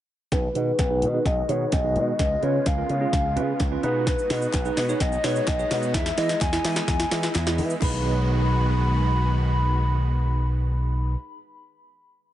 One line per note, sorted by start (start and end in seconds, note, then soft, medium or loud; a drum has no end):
0.32 0.47 B1 loud
0.32 2.18 D#3 medium
0.32 3.80 G#3 medium
0.32 7.78 B3 medium
0.32 0.48 D#4 medium
0.32 2.18 F#4 medium
0.32 0.48 G#4 medium
0.32 1.22 B4 medium
0.32 0.48 B4 medium
0.32 kick loud
0.32 snare medium
0.32 closed hi-hat medium
0.55 0.71 B2 medium
0.55 0.79 D#4 medium
0.55 0.79 G#4 medium
0.55 0.79 B4 medium
0.55 closed hi-hat soft
0.79 1.04 B1 loud
0.79 kick loud
0.79 snare medium
0.79 closed hi-hat medium
0.90 1.06 D#4 medium
0.90 1.06 G#4 medium
0.90 1.06 B4 medium
1.02 1.18 B2 medium
1.02 closed hi-hat soft
1.14 1.37 D#4 medium
1.14 1.38 G#4 medium
1.14 1.38 B4 medium
1.26 1.41 B1 loud
1.26 1.51 D#5 loud
1.26 kick loud
1.26 snare medium
1.26 closed hi-hat medium
1.49 1.64 B2 loud
1.49 1.73 D#4 medium
1.49 1.73 G#4 medium
1.49 1.73 B4 medium
1.49 1.74 C#5 medium
1.49 closed hi-hat medium
1.72 1.97 B1 loud
1.72 2.19 D#5 loud
1.72 kick loud
1.72 snare medium
1.72 closed hi-hat medium
1.84 2.08 D#4 medium
1.84 2.08 G#4 medium
1.84 2.08 B4 medium
1.96 2.11 B2 loud
1.96 closed hi-hat soft
2.19 2.35 C#2 loud
2.19 3.82 C#3 medium
2.19 2.35 C#4 medium
2.19 3.82 F4 medium
2.19 2.35 F4 medium
2.19 2.35 B4 medium
2.19 2.41 D#5 loud
2.19 kick loud
2.19 snare medium
2.19 closed hi-hat medium
2.42 2.58 C#3 medium
2.42 2.66 C#4 medium
2.42 2.66 F4 medium
2.42 2.67 B4 medium
2.42 2.68 C#5 loud
2.42 closed hi-hat soft
2.66 2.82 C#2 loud
2.66 3.60 F5 loud
2.66 kick loud
2.66 snare medium
2.66 closed hi-hat medium
2.78 2.94 C#4 medium
2.78 2.94 F4 medium
2.78 2.94 A#4 medium
2.89 3.05 C#3 medium
2.89 closed hi-hat medium
3.01 3.25 C#4 medium
3.01 3.25 F4 medium
3.01 3.25 G#4 medium
3.13 3.38 C#2 loud
3.13 kick loud
3.13 snare medium
3.13 closed hi-hat medium
3.36 3.52 C#3 loud
3.36 3.60 C#4 medium
3.36 3.60 F4 medium
3.36 3.60 B4 loud
3.36 closed hi-hat medium
3.60 3.75 C#2 loud
3.60 kick loud
3.60 snare medium
3.60 closed hi-hat medium
3.72 3.83 C#4 medium
3.72 3.84 F4 medium
3.72 3.83 B4 loud
3.83 4.14 B2 loud
3.83 7.78 G#3 medium
3.83 4.21 D#4 medium
3.83 7.78 D#4 medium
3.83 5.92 F#4 medium
3.83 4.21 G#4 medium
3.83 4.21 B4 loud
3.83 closed hi-hat soft
4.07 5.02 B4 loud
4.07 kick loud
4.07 snare medium
4.07 closed hi-hat medium
4.07 shaker medium
4.19 shaker medium
4.30 4.46 B2 loud
4.30 4.54 D#4 medium
4.30 4.54 G#4 medium
4.30 4.54 B4 medium
4.30 snare medium
4.30 open hi-hat medium
4.30 shaker soft
4.42 shaker medium
4.53 4.69 B1 loud
4.53 kick loud
4.53 snare medium
4.53 clap medium
4.53 closed hi-hat medium
4.53 shaker medium
4.65 4.81 D#4 loud
4.65 4.81 G#4 medium
4.65 4.81 B4 loud
4.65 shaker medium
4.77 4.92 B2 loud
4.77 snare medium
4.77 open hi-hat medium
4.77 shaker medium
4.89 5.12 D#4 medium
4.89 5.13 G#4 medium
4.89 5.13 C#5 medium
4.89 shaker medium
5.00 5.16 B1 loud
5.00 5.26 D#5 loud
5.00 kick loud
5.00 snare medium
5.00 closed hi-hat medium
5.00 shaker medium
5.12 shaker medium
5.24 5.39 B2 loud
5.24 5.48 D#4 medium
5.24 5.48 G#4 medium
5.24 5.48 B4 medium
5.24 5.49 C#5 medium
5.24 snare medium
5.24 open hi-hat medium
5.24 shaker medium
5.36 shaker medium
5.47 5.63 B1 loud
5.47 5.96 D#5 loud
5.47 kick loud
5.47 snare loud
5.47 clap medium
5.47 closed hi-hat medium
5.47 shaker medium
5.59 5.83 D#4 medium
5.59 5.83 G#4 medium
5.59 5.83 C#5 medium
5.59 shaker medium
5.71 5.96 B2 loud
5.71 snare loud
5.71 open hi-hat medium
5.71 shaker soft
5.83 shaker medium
5.94 6.10 E2 loud
5.94 6.10 E4 medium
5.94 7.80 E4 medium
5.94 6.10 G#4 medium
5.94 6.10 D#5 medium
5.94 6.17 E5 loud
5.94 kick loud
5.94 snare loud
5.94 closed hi-hat medium
5.94 shaker medium
6.06 snare loud
6.06 shaker medium
6.18 6.33 E3 loud
6.18 6.41 E4 medium
6.18 6.41 G#4 medium
6.18 6.40 D#5 loud
6.18 6.42 D#5 medium
6.18 snare loud
6.18 open hi-hat medium
6.18 shaker soft
6.29 snare loud
6.29 shaker medium
6.41 6.56 E2 loud
6.41 7.31 G#5 loud
6.41 kick loud
6.41 snare loud
6.41 clap medium
6.41 closed hi-hat medium
6.41 shaker medium
6.53 6.69 E4 medium
6.53 6.69 G#4 medium
6.53 6.69 D#5 medium
6.53 snare loud
6.53 shaker medium
6.64 6.80 E3 loud
6.64 snare loud
6.64 open hi-hat medium
6.64 shaker medium
6.76 7.00 E4 medium
6.76 7.00 G#4 medium
6.76 7.00 D#5 medium
6.76 snare loud
6.76 shaker medium
6.88 7.03 E2 loud
6.88 kick loud
6.88 snare loud
6.88 closed hi-hat medium
6.88 shaker medium
7.00 snare loud
7.00 shaker medium
7.11 7.27 E3 loud
7.11 7.35 E4 medium
7.11 7.35 G#4 medium
7.11 7.35 D#5 loud
7.11 snare loud
7.11 open hi-hat medium
7.11 shaker medium
7.23 snare loud
7.23 shaker medium
7.35 7.60 E2 loud
7.35 snare loud
7.35 clap medium
7.35 closed hi-hat medium
7.35 shaker medium
7.47 7.70 E4 medium
7.47 7.70 G#4 medium
7.47 7.71 D#5 loud
7.47 snare loud
7.47 shaker medium
7.58 7.74 E3 loud
7.58 open hi-hat medium
7.58 shaker soft
7.70 shaker medium
7.80 11.14 B1 loud
7.80 11.14 D#3 medium
7.80 11.14 G#3 medium
7.80 11.14 B3 medium
7.80 11.13 D#4 medium
7.80 11.14 F#4 medium
7.80 11.15 G#4 medium
7.80 11.17 B4 medium
7.80 11.14 B5 medium
7.80 kick loud
7.80 clap medium
7.80 crash medium